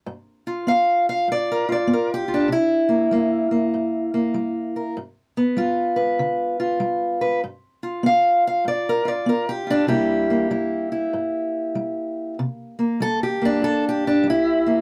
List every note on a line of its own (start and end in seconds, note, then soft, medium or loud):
0.06 0.63 G2 medium
0.47 1.67 F4 medium
0.67 1.23 B3 medium
0.67 1.08 F5 medium
1.09 1.28 F5 medium
1.28 1.85 G2 medium
1.28 1.70 D5 medium
1.52 1.70 A#4 medium
1.69 2.27 F4 soft
1.69 2.11 D5 medium
1.87 2.45 B3 medium
1.93 2.12 A#4 medium
2.14 2.52 G4 medium
2.28 2.47 F4 soft
2.34 2.52 D4 medium
2.48 3.06 C3 medium
2.52 4.97 E4 medium
2.89 3.11 A#3 soft
3.11 3.69 G3 medium
3.11 3.50 A#3 soft
3.51 4.13 A#3 soft
3.74 4.31 G2 medium
4.14 4.97 A#3 soft
4.34 4.92 G3 medium
4.76 4.94 A#4 soft
4.97 5.54 G2 medium
5.37 7.41 B3 medium
5.57 6.14 G3 medium
5.57 6.58 F4 medium
5.96 7.20 B4 medium
6.19 6.77 D3 medium
6.60 7.40 F4 medium
6.80 7.38 G3 medium
7.21 7.40 B4 medium
7.44 8.01 G2 medium
7.83 9.04 F4 soft
8.03 8.61 B3 medium
8.03 8.46 F5 medium
8.47 8.67 F5 medium
8.65 9.23 G2 medium
8.65 9.07 D5 medium
8.89 9.09 A#4 medium
9.05 9.66 F4 soft
9.05 9.48 D5 medium
9.26 9.85 B3 medium
9.26 9.49 A#4 medium
9.49 9.87 G4 medium
9.67 9.89 D4 medium
9.67 9.87 F4 soft
9.87 10.46 C3 medium
9.87 10.50 G3 soft
9.87 10.30 A#3 soft
9.87 10.51 E4 medium
9.87 12.38 G4 medium
10.30 12.78 A#3 soft
10.51 11.09 G3 medium
10.51 10.91 E4 soft
10.92 12.36 E4 soft
11.13 11.72 G2 medium
11.75 12.34 G3 medium
12.39 12.96 C3 medium
12.79 13.41 A#3 soft
13.00 13.58 G3 medium
13.00 13.22 A4 loud
13.23 13.64 G4 medium
13.42 14.65 A#3 soft
13.42 14.06 D4 medium
13.62 14.20 G2 medium
13.62 13.84 A4 loud
13.89 14.69 G4 medium
14.07 14.26 D4 medium
14.23 14.81 G3 medium
14.30 14.81 E4 medium
14.66 14.81 A#3 soft